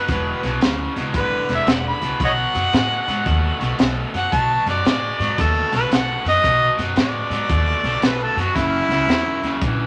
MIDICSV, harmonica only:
0, 0, Header, 1, 2, 480
1, 0, Start_track
1, 0, Tempo, 529101
1, 83, Time_signature, 4, 2, 24, 8
1, 8951, End_track
2, 0, Start_track
2, 0, Title_t, "Harmonica"
2, 0, Program_c, 0, 22
2, 0, Note_on_c, 0, 71, 108
2, 539, Note_off_c, 0, 71, 0
2, 1062, Note_on_c, 0, 71, 102
2, 1364, Note_off_c, 0, 71, 0
2, 1404, Note_on_c, 0, 76, 97
2, 1556, Note_on_c, 0, 78, 83
2, 1570, Note_off_c, 0, 76, 0
2, 1696, Note_off_c, 0, 78, 0
2, 1707, Note_on_c, 0, 83, 84
2, 2007, Note_off_c, 0, 83, 0
2, 2036, Note_on_c, 0, 73, 78
2, 2036, Note_on_c, 0, 75, 78
2, 2036, Note_on_c, 0, 78, 111
2, 2105, Note_off_c, 0, 73, 0
2, 2109, Note_off_c, 0, 75, 0
2, 3425, Note_off_c, 0, 78, 0
2, 3782, Note_on_c, 0, 78, 100
2, 3941, Note_on_c, 0, 81, 92
2, 3955, Note_off_c, 0, 78, 0
2, 4238, Note_off_c, 0, 81, 0
2, 4262, Note_on_c, 0, 74, 90
2, 4912, Note_on_c, 0, 69, 89
2, 4925, Note_off_c, 0, 74, 0
2, 5204, Note_off_c, 0, 69, 0
2, 5226, Note_on_c, 0, 71, 103
2, 5374, Note_off_c, 0, 71, 0
2, 5389, Note_on_c, 0, 78, 94
2, 5682, Note_off_c, 0, 78, 0
2, 5702, Note_on_c, 0, 75, 115
2, 6157, Note_off_c, 0, 75, 0
2, 6353, Note_on_c, 0, 74, 85
2, 7313, Note_on_c, 0, 71, 88
2, 7326, Note_off_c, 0, 74, 0
2, 7470, Note_on_c, 0, 69, 80
2, 7483, Note_off_c, 0, 71, 0
2, 7624, Note_on_c, 0, 66, 95
2, 7638, Note_off_c, 0, 69, 0
2, 7773, Note_on_c, 0, 64, 113
2, 7787, Note_off_c, 0, 66, 0
2, 8699, Note_off_c, 0, 64, 0
2, 8951, End_track
0, 0, End_of_file